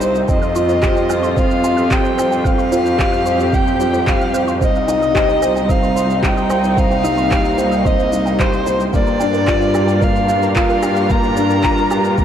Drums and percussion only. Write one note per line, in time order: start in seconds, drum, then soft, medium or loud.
0.01 shaker medium
0.15 shaker soft
0.28 kick loud
0.28 shaker soft
0.42 shaker soft
0.56 shaker medium
0.69 shaker soft
0.83 kick loud
0.83 clap loud
0.83 low woodblock medium
0.83 shaker soft
0.96 shaker soft
1.10 low woodblock medium
1.10 shaker medium
1.24 shaker soft
1.37 kick loud
1.37 shaker soft
1.51 shaker soft
1.64 shaker medium
1.78 shaker soft
1.91 kick loud
1.91 clap medium
1.91 shaker soft
2.05 shaker soft
2.19 low woodblock medium
2.19 shaker medium
2.32 shaker soft
2.45 kick loud
2.45 shaker soft
2.59 shaker soft
2.72 shaker medium
2.86 shaker soft
2.99 kick loud
2.99 clap medium
2.99 low woodblock medium
2.99 shaker soft
3.13 shaker soft
3.26 shaker medium
3.40 shaker soft
3.53 kick loud
3.53 shaker soft
3.67 shaker soft
3.80 shaker medium
3.94 shaker soft
4.07 kick loud
4.07 clap medium
4.07 shaker soft
4.21 shaker soft
4.34 shaker medium
4.48 shaker soft
4.61 kick loud
4.61 shaker soft
4.75 shaker soft
4.89 shaker medium
5.02 shaker soft
5.15 kick loud
5.15 clap medium
5.15 low woodblock medium
5.15 shaker soft
5.29 shaker soft
5.42 low woodblock medium
5.42 shaker medium
5.56 shaker soft
5.69 kick loud
5.69 shaker soft
5.83 shaker soft
5.97 shaker medium
6.10 shaker soft
6.23 kick loud
6.23 clap medium
6.23 shaker soft
6.37 shaker soft
6.50 low woodblock medium
6.50 shaker medium
6.64 shaker soft
6.77 kick loud
6.77 shaker soft
6.91 shaker soft
7.05 shaker medium
7.18 shaker soft
7.31 kick loud
7.31 clap medium
7.31 low woodblock medium
7.31 shaker soft
7.45 shaker soft
7.58 shaker medium
7.72 shaker soft
7.85 kick loud
7.85 shaker soft
7.99 shaker soft
8.13 shaker medium
8.26 shaker soft
8.39 kick loud
8.39 clap medium
8.39 shaker soft
8.53 shaker soft
8.67 shaker medium
8.80 shaker soft
8.93 kick loud
8.93 shaker soft
9.07 shaker soft
9.20 shaker medium
9.34 shaker soft
9.47 kick loud
9.47 clap medium
9.47 low woodblock medium
9.47 shaker soft
9.61 shaker soft
9.75 low woodblock medium
9.75 shaker medium
9.88 shaker soft
10.02 kick loud
10.02 shaker soft
10.16 shaker soft
10.29 shaker medium
10.43 shaker soft
10.56 kick loud
10.56 clap medium
10.56 shaker soft
10.70 shaker soft
10.83 low woodblock medium
10.83 shaker medium
10.96 shaker soft
11.10 kick loud
11.10 shaker soft
11.23 shaker soft
11.37 shaker medium
11.50 shaker soft
11.64 kick medium
11.64 clap loud
11.64 low woodblock medium
11.64 shaker soft
11.78 shaker soft
11.91 low woodblock medium
11.91 shaker medium
12.04 shaker soft
12.18 kick loud
12.18 shaker soft